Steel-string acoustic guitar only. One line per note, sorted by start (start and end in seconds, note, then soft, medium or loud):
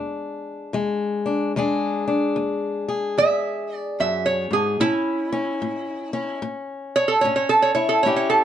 0.00 0.67 E2 medium
0.00 0.73 G#3 medium
0.00 1.24 D4 medium
0.73 1.48 E2 medium
0.73 1.55 G#3 medium
1.26 1.51 D4 medium
1.56 2.30 E2 medium
1.56 4.80 G#3 medium
1.56 2.06 D4 medium
1.56 2.87 G#4 medium
2.08 4.77 D4 medium
2.36 3.11 E2 medium
2.88 4.76 G#4 medium
3.18 3.92 E2 medium
4.00 4.50 F#2 medium
4.51 4.80 G#2 medium
4.80 5.55 A2 medium
4.80 5.32 C#4 medium
5.32 6.13 C#4 medium
5.62 6.36 A2 medium
6.13 7.23 C#4 medium
6.42 7.17 A2 medium
7.24 7.99 A2 medium
7.24 8.01 C#4 medium
7.76 8.06 E4 medium
8.05 8.44 A2 medium
8.05 8.44 C#4 medium
8.05 8.44 E4 medium
8.05 8.44 G4 medium